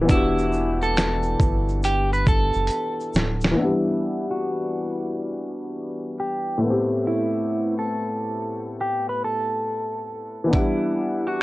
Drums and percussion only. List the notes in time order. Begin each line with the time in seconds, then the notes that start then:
0.09 kick, closed hi-hat, shaker
0.38 shaker
0.53 shaker
0.82 shaker
0.97 finger snap, snare, closed hi-hat, shaker
1.23 shaker
1.40 kick, shaker
1.69 shaker
1.83 closed hi-hat, shaker
2.13 shaker
2.27 kick, shaker
2.53 shaker
2.67 closed hi-hat, shaker
2.70 shaker
3.00 shaker
3.14 snare, shaker
3.41 snare, shaker
10.53 kick, closed hi-hat